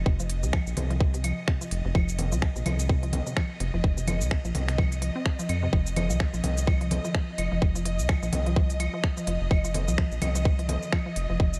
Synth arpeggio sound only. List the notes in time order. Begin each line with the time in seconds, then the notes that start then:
0.06 C3
0.20 F3
0.43 C3
0.53 F3
0.77 C3
0.90 F3
1.14 C3
1.24 F3
1.48 C3
1.61 F3
1.85 C3
1.95 F3
2.19 C3
2.32 F3
2.56 C3
2.66 F3
2.89 C3
3.03 F3
3.27 C3
3.37 F3
3.60 C3
3.74 F3
3.97 C3
4.08 F3
4.31 C3
4.45 F3
4.68 C3
4.78 F3
5.02 F3
5.16 C4
5.39 F3
5.49 C4
5.63 C3
5.73 F3
5.96 F3
6.10 F3
6.34 F3
6.44 F3
6.67 F3
6.81 F3
7.05 F3
7.15 F3
7.38 F3
7.52 F3
7.75 F3
7.85 F3
8.09 F3
8.23 F3
8.46 F3
8.56 F3
8.80 F3
8.94 F3
9.17 F3
9.27 F3
9.51 F3
9.65 F3
9.88 F3
9.98 F3
10.22 F3
10.35 F3
10.59 F3
10.69 F3
10.93 F3
11.06 F3
11.30 F3
11.40 F3